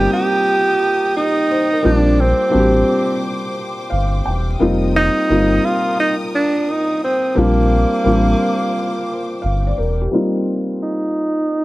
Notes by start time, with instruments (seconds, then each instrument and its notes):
Already playing: felt piano G3 A#3 C4 D#4 F4 G4, string section A#4 G5 D#6
0.13 tenor saxophone G4
1.16 tenor saxophone D#4, felt piano G4
1.51 felt piano C5
1.72 felt piano A#4
1.83 sub bass A#1, felt piano G3 A#3 C4 D4 F4, tenor saxophone D4, string section C5 D6
2.20 tenor saxophone C4
2.50 felt piano G3 A#3 C4 D4 F#4
2.54 sub bass A1
2.59 felt piano G4
3.90 sub bass G1, felt piano F5
4.26 sub bass E1, felt piano G5
4.59 sub bass F1, felt piano G3 A#3 C4 D#4 F4, string section A#4 D#6
4.96 tenor saxophone D#4
5.29 sub bass G1, felt piano G3 A#3 C4 D#4 F4
5.65 tenor saxophone F4
6.00 tenor saxophone D#4
6.35 tenor saxophone D4
6.71 tenor saxophone D#4
7.04 tenor saxophone C4
7.35 sub bass A#1, felt piano G3 A#3 C4 D4 F4, tenor saxophone A#3, string section C5 D6
8.04 sub bass A1, felt piano G3 A#3 C4 D4 F4
9.42 sub bass G1, felt piano F5
9.67 felt piano D5
9.78 sub bass E1, felt piano A#4
10.02 felt piano G4
10.11 felt piano G3 A#3 C4 D#4 F4
10.83 tenor saxophone D#4